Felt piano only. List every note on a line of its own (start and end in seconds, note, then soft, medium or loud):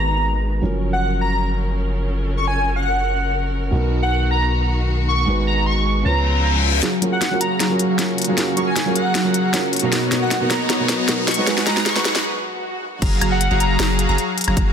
0.00 0.60 G#3 medium
0.00 0.61 D#4 medium
0.00 0.62 F#4 medium
0.00 0.62 B4 medium
0.61 3.71 F3 medium
0.61 3.70 F#3 medium
0.61 3.70 C#4 medium
0.65 3.72 A#4 medium
3.71 5.25 B2 medium
3.71 5.25 B3 medium
3.71 5.26 D#4 medium
3.71 5.27 A#4 medium
5.26 6.02 G#3 medium
5.26 6.03 D#4 medium
5.26 6.03 F#4 medium
5.30 6.04 B4 medium
6.03 6.80 C#3 medium
6.03 6.80 C#4 medium
6.03 6.81 F4 medium
6.03 6.82 B4 medium
7.01 7.15 F#3 medium
7.01 7.15 C#4 medium
7.01 7.15 F4 medium
7.01 7.16 A#4 medium
7.31 7.39 F#3 medium
7.31 7.39 C#4 medium
7.31 7.39 F4 medium
7.31 7.40 A#4 loud
7.69 7.77 F#3 medium
7.69 7.78 C#4 medium
7.69 7.78 F4 medium
7.69 7.78 A#4 medium
7.98 8.25 F#3 medium
7.98 8.26 C#4 medium
7.98 8.26 F4 medium
7.98 8.26 A#4 medium
8.27 8.54 F#3 medium
8.27 8.54 C#4 medium
8.27 8.55 F4 medium
8.27 8.55 A#4 loud
8.56 8.70 F#3 medium
8.56 8.70 C#4 medium
8.56 8.70 F4 medium
8.56 8.71 A#4 medium
8.85 8.93 F#3 medium
8.85 8.94 C#4 medium
8.85 8.94 F4 medium
8.85 8.94 A#4 loud
9.24 9.32 F#3 medium
9.24 9.32 C#4 medium
9.24 9.33 F4 medium
9.24 9.33 A#4 medium
9.53 9.80 F#3 medium
9.53 9.81 C#4 medium
9.53 9.81 F4 medium
9.53 9.81 A#4 medium
9.82 10.09 B2 loud
9.82 10.09 B3 medium
9.82 10.10 D#4 medium
9.82 10.10 A#4 loud
10.10 10.24 B2 medium
10.10 10.25 B3 medium
10.10 10.25 D#4 medium
10.10 10.25 A#4 medium
10.40 10.48 B2 medium
10.40 10.49 B3 medium
10.40 10.49 D#4 medium
10.40 10.49 A#4 loud
10.79 10.87 B2 medium
10.79 10.87 B3 medium
10.79 10.88 D#4 medium
10.79 10.88 A#4 medium
11.08 11.35 B2 medium
11.08 11.36 B3 medium
11.08 11.36 D#4 medium
11.08 11.36 A#4 medium
11.37 11.64 G#3 medium
11.37 11.64 D#4 medium
11.37 11.65 F#4 medium
11.37 11.65 B4 loud
11.66 11.79 G#3 medium
11.66 11.80 D#4 medium
11.66 11.80 F#4 medium
11.66 11.80 B4 medium
11.95 12.03 G#3 medium
11.95 12.04 D#4 medium
11.95 12.04 F#4 medium
11.95 12.04 B4 loud